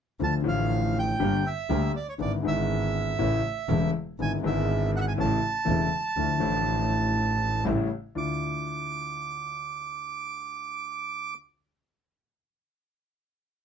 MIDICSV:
0, 0, Header, 1, 4, 480
1, 0, Start_track
1, 0, Key_signature, -1, "minor"
1, 0, Tempo, 497512
1, 199, Time_signature, 4, 2, 24, 8
1, 13162, End_track
2, 0, Start_track
2, 0, Title_t, "Bandoneon"
2, 0, Program_c, 0, 23
2, 228, Note_on_c, 0, 81, 86
2, 329, Note_off_c, 0, 81, 0
2, 466, Note_on_c, 0, 77, 77
2, 946, Note_off_c, 0, 77, 0
2, 953, Note_on_c, 0, 79, 85
2, 1415, Note_on_c, 0, 76, 75
2, 1430, Note_off_c, 0, 79, 0
2, 1852, Note_off_c, 0, 76, 0
2, 1894, Note_on_c, 0, 74, 66
2, 1998, Note_off_c, 0, 74, 0
2, 2016, Note_on_c, 0, 73, 62
2, 2066, Note_off_c, 0, 73, 0
2, 2138, Note_on_c, 0, 74, 69
2, 2242, Note_off_c, 0, 74, 0
2, 2386, Note_on_c, 0, 76, 70
2, 3767, Note_off_c, 0, 76, 0
2, 4071, Note_on_c, 0, 80, 84
2, 4170, Note_off_c, 0, 80, 0
2, 4307, Note_on_c, 0, 76, 68
2, 4734, Note_off_c, 0, 76, 0
2, 4789, Note_on_c, 0, 78, 80
2, 4805, Note_on_c, 0, 76, 71
2, 4807, Note_off_c, 0, 78, 0
2, 4824, Note_off_c, 0, 76, 0
2, 4833, Note_on_c, 0, 78, 78
2, 4877, Note_off_c, 0, 78, 0
2, 4902, Note_on_c, 0, 80, 79
2, 4947, Note_off_c, 0, 80, 0
2, 5021, Note_on_c, 0, 81, 88
2, 7368, Note_off_c, 0, 81, 0
2, 7889, Note_on_c, 0, 86, 73
2, 10940, Note_off_c, 0, 86, 0
2, 13162, End_track
3, 0, Start_track
3, 0, Title_t, "Grand piano"
3, 0, Program_c, 1, 0
3, 188, Note_on_c, 1, 50, 49
3, 192, Note_on_c, 1, 38, 46
3, 192, Note_on_c, 1, 57, 38
3, 197, Note_on_c, 1, 65, 49
3, 199, Note_on_c, 1, 53, 40
3, 384, Note_off_c, 1, 50, 0
3, 397, Note_off_c, 1, 38, 0
3, 397, Note_off_c, 1, 57, 0
3, 399, Note_off_c, 1, 65, 0
3, 399, Note_on_c, 1, 50, 54
3, 400, Note_off_c, 1, 53, 0
3, 416, Note_on_c, 1, 53, 49
3, 423, Note_on_c, 1, 45, 70
3, 424, Note_on_c, 1, 33, 64
3, 431, Note_on_c, 1, 57, 50
3, 441, Note_on_c, 1, 65, 57
3, 1103, Note_off_c, 1, 50, 0
3, 1112, Note_off_c, 1, 53, 0
3, 1115, Note_off_c, 1, 45, 0
3, 1116, Note_off_c, 1, 33, 0
3, 1119, Note_off_c, 1, 57, 0
3, 1124, Note_off_c, 1, 65, 0
3, 1152, Note_on_c, 1, 43, 71
3, 1153, Note_on_c, 1, 50, 61
3, 1154, Note_on_c, 1, 55, 57
3, 1156, Note_on_c, 1, 31, 72
3, 1156, Note_on_c, 1, 67, 68
3, 1157, Note_on_c, 1, 58, 58
3, 1357, Note_off_c, 1, 43, 0
3, 1357, Note_off_c, 1, 50, 0
3, 1357, Note_off_c, 1, 55, 0
3, 1358, Note_off_c, 1, 31, 0
3, 1359, Note_off_c, 1, 58, 0
3, 1359, Note_off_c, 1, 67, 0
3, 1632, Note_on_c, 1, 50, 71
3, 1637, Note_on_c, 1, 38, 73
3, 1637, Note_on_c, 1, 55, 57
3, 1637, Note_on_c, 1, 58, 57
3, 1639, Note_on_c, 1, 67, 66
3, 1837, Note_off_c, 1, 50, 0
3, 1838, Note_off_c, 1, 38, 0
3, 1838, Note_off_c, 1, 55, 0
3, 1838, Note_off_c, 1, 58, 0
3, 1839, Note_off_c, 1, 67, 0
3, 2105, Note_on_c, 1, 50, 43
3, 2110, Note_on_c, 1, 32, 51
3, 2111, Note_on_c, 1, 56, 37
3, 2113, Note_on_c, 1, 44, 47
3, 2115, Note_on_c, 1, 64, 45
3, 2117, Note_on_c, 1, 59, 38
3, 2312, Note_off_c, 1, 50, 0
3, 2315, Note_off_c, 1, 32, 0
3, 2316, Note_off_c, 1, 56, 0
3, 2317, Note_off_c, 1, 44, 0
3, 2318, Note_off_c, 1, 64, 0
3, 2319, Note_off_c, 1, 59, 0
3, 2334, Note_on_c, 1, 50, 54
3, 2344, Note_on_c, 1, 56, 56
3, 2358, Note_on_c, 1, 32, 68
3, 2359, Note_on_c, 1, 44, 65
3, 2361, Note_on_c, 1, 59, 54
3, 2376, Note_on_c, 1, 64, 62
3, 3027, Note_off_c, 1, 50, 0
3, 3032, Note_off_c, 1, 56, 0
3, 3039, Note_off_c, 1, 32, 0
3, 3040, Note_off_c, 1, 44, 0
3, 3041, Note_off_c, 1, 59, 0
3, 3048, Note_off_c, 1, 64, 0
3, 3074, Note_on_c, 1, 33, 77
3, 3076, Note_on_c, 1, 49, 58
3, 3076, Note_on_c, 1, 52, 53
3, 3076, Note_on_c, 1, 57, 57
3, 3078, Note_on_c, 1, 45, 74
3, 3081, Note_on_c, 1, 64, 69
3, 3275, Note_off_c, 1, 33, 0
3, 3276, Note_off_c, 1, 49, 0
3, 3276, Note_off_c, 1, 52, 0
3, 3276, Note_off_c, 1, 57, 0
3, 3277, Note_off_c, 1, 45, 0
3, 3278, Note_off_c, 1, 64, 0
3, 3550, Note_on_c, 1, 49, 60
3, 3553, Note_on_c, 1, 52, 60
3, 3555, Note_on_c, 1, 57, 58
3, 3559, Note_on_c, 1, 64, 72
3, 3561, Note_on_c, 1, 28, 71
3, 3561, Note_on_c, 1, 40, 72
3, 3752, Note_off_c, 1, 49, 0
3, 3754, Note_off_c, 1, 52, 0
3, 3755, Note_off_c, 1, 57, 0
3, 3757, Note_off_c, 1, 64, 0
3, 3758, Note_off_c, 1, 28, 0
3, 3758, Note_off_c, 1, 40, 0
3, 4041, Note_on_c, 1, 50, 41
3, 4047, Note_on_c, 1, 64, 47
3, 4048, Note_on_c, 1, 56, 39
3, 4051, Note_on_c, 1, 32, 46
3, 4051, Note_on_c, 1, 44, 51
3, 4052, Note_on_c, 1, 59, 43
3, 4237, Note_off_c, 1, 50, 0
3, 4240, Note_off_c, 1, 56, 0
3, 4240, Note_off_c, 1, 64, 0
3, 4242, Note_off_c, 1, 32, 0
3, 4243, Note_off_c, 1, 44, 0
3, 4243, Note_off_c, 1, 59, 0
3, 4259, Note_on_c, 1, 50, 55
3, 4275, Note_on_c, 1, 56, 57
3, 4282, Note_on_c, 1, 32, 74
3, 4284, Note_on_c, 1, 44, 70
3, 4290, Note_on_c, 1, 59, 55
3, 4302, Note_on_c, 1, 64, 67
3, 4945, Note_off_c, 1, 50, 0
3, 4953, Note_off_c, 1, 56, 0
3, 4956, Note_off_c, 1, 32, 0
3, 4958, Note_off_c, 1, 44, 0
3, 4960, Note_off_c, 1, 59, 0
3, 4967, Note_off_c, 1, 64, 0
3, 4989, Note_on_c, 1, 49, 62
3, 4995, Note_on_c, 1, 45, 70
3, 4995, Note_on_c, 1, 52, 58
3, 4996, Note_on_c, 1, 33, 70
3, 4997, Note_on_c, 1, 57, 58
3, 4998, Note_on_c, 1, 64, 68
3, 5188, Note_off_c, 1, 49, 0
3, 5191, Note_off_c, 1, 45, 0
3, 5191, Note_off_c, 1, 52, 0
3, 5192, Note_off_c, 1, 33, 0
3, 5192, Note_off_c, 1, 57, 0
3, 5193, Note_off_c, 1, 64, 0
3, 5451, Note_on_c, 1, 40, 72
3, 5451, Note_on_c, 1, 49, 61
3, 5451, Note_on_c, 1, 57, 58
3, 5454, Note_on_c, 1, 52, 56
3, 5457, Note_on_c, 1, 64, 73
3, 5459, Note_on_c, 1, 28, 69
3, 5659, Note_off_c, 1, 40, 0
3, 5659, Note_off_c, 1, 49, 0
3, 5659, Note_off_c, 1, 57, 0
3, 5660, Note_off_c, 1, 52, 0
3, 5662, Note_off_c, 1, 64, 0
3, 5663, Note_off_c, 1, 28, 0
3, 5946, Note_on_c, 1, 53, 41
3, 5947, Note_on_c, 1, 50, 50
3, 5950, Note_on_c, 1, 38, 48
3, 5951, Note_on_c, 1, 57, 36
3, 5952, Note_on_c, 1, 64, 51
3, 6141, Note_off_c, 1, 50, 0
3, 6146, Note_off_c, 1, 53, 0
3, 6147, Note_off_c, 1, 38, 0
3, 6148, Note_off_c, 1, 57, 0
3, 6149, Note_off_c, 1, 64, 0
3, 6155, Note_on_c, 1, 50, 59
3, 6170, Note_on_c, 1, 53, 56
3, 6174, Note_on_c, 1, 45, 72
3, 6175, Note_on_c, 1, 33, 69
3, 6179, Note_on_c, 1, 57, 53
3, 6196, Note_on_c, 1, 64, 61
3, 7316, Note_off_c, 1, 50, 0
3, 7323, Note_off_c, 1, 53, 0
3, 7325, Note_off_c, 1, 45, 0
3, 7326, Note_off_c, 1, 33, 0
3, 7328, Note_off_c, 1, 57, 0
3, 7336, Note_off_c, 1, 64, 0
3, 7377, Note_on_c, 1, 49, 60
3, 7377, Note_on_c, 1, 55, 60
3, 7379, Note_on_c, 1, 33, 76
3, 7382, Note_on_c, 1, 45, 72
3, 7383, Note_on_c, 1, 57, 62
3, 7383, Note_on_c, 1, 64, 69
3, 7588, Note_off_c, 1, 49, 0
3, 7588, Note_off_c, 1, 55, 0
3, 7589, Note_off_c, 1, 33, 0
3, 7590, Note_off_c, 1, 45, 0
3, 7591, Note_off_c, 1, 57, 0
3, 7591, Note_off_c, 1, 64, 0
3, 7865, Note_on_c, 1, 38, 44
3, 7865, Note_on_c, 1, 64, 43
3, 7866, Note_on_c, 1, 62, 46
3, 7866, Note_on_c, 1, 65, 55
3, 10916, Note_off_c, 1, 38, 0
3, 10916, Note_off_c, 1, 64, 0
3, 10917, Note_off_c, 1, 65, 0
3, 10918, Note_off_c, 1, 62, 0
3, 13162, End_track
4, 0, Start_track
4, 0, Title_t, "Double bass"
4, 0, Program_c, 2, 43
4, 195, Note_on_c, 2, 38, 52
4, 398, Note_off_c, 2, 38, 0
4, 436, Note_on_c, 2, 33, 86
4, 1122, Note_off_c, 2, 33, 0
4, 1157, Note_on_c, 2, 31, 78
4, 1359, Note_off_c, 2, 31, 0
4, 1639, Note_on_c, 2, 38, 88
4, 1839, Note_off_c, 2, 38, 0
4, 2118, Note_on_c, 2, 32, 57
4, 2319, Note_off_c, 2, 32, 0
4, 2359, Note_on_c, 2, 32, 83
4, 3040, Note_off_c, 2, 32, 0
4, 3083, Note_on_c, 2, 33, 88
4, 3279, Note_off_c, 2, 33, 0
4, 3562, Note_on_c, 2, 28, 86
4, 3758, Note_off_c, 2, 28, 0
4, 4046, Note_on_c, 2, 32, 59
4, 4240, Note_off_c, 2, 32, 0
4, 4279, Note_on_c, 2, 32, 90
4, 4955, Note_off_c, 2, 32, 0
4, 5004, Note_on_c, 2, 33, 86
4, 5196, Note_off_c, 2, 33, 0
4, 5475, Note_on_c, 2, 28, 85
4, 5671, Note_off_c, 2, 28, 0
4, 5947, Note_on_c, 2, 38, 54
4, 6146, Note_off_c, 2, 38, 0
4, 6186, Note_on_c, 2, 33, 91
4, 7331, Note_off_c, 2, 33, 0
4, 7390, Note_on_c, 2, 33, 79
4, 7594, Note_off_c, 2, 33, 0
4, 7871, Note_on_c, 2, 38, 47
4, 8075, Note_off_c, 2, 38, 0
4, 13162, End_track
0, 0, End_of_file